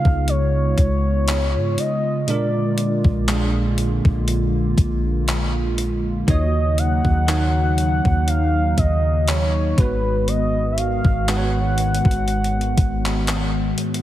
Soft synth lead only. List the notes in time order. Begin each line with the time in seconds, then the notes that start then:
Already playing: F5
0.29 C#5
1.79 D#5
2.29 D5
6.29 D#5
6.79 F#5
8.28 F5
8.78 D#5
9.28 C#5
9.78 B4
10.28 D#5
10.72 E5
10.78 F5
11.28 F#5